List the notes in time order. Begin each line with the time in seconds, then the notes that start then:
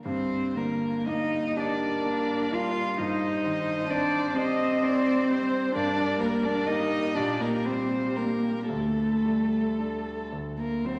0.05 G2 C4 C5
0.55 D3 A#3 A#4
1.07 A#3 D#4 D#5
1.56 D4 G4 A#4 D5
2.04 A#3
2.53 G3 F4 F5
2.98 G2 D#4 C5 D#5
3.45 D#3
3.88 C4 D4 D5
4.34 C4 G4 C5 D#5
4.83 C4 D5
5.30 G3 C5
5.75 G2 D4 A#4 D5
6.20 G3 A#3 A#4
6.43 D4 D5
6.66 A#3 D#4 G4 D#5
7.15 A#2 D4 G4 D5
7.41 A#3 A#4
7.65 G3 C4 C5
8.16 A#3 D4 G4 A#4
8.64 A#3
8.70 D2 A3 A4
9.25 G3
9.78 D4 A4
10.32 D2
10.57 A#3 A#4
10.85 F#3 C4 C5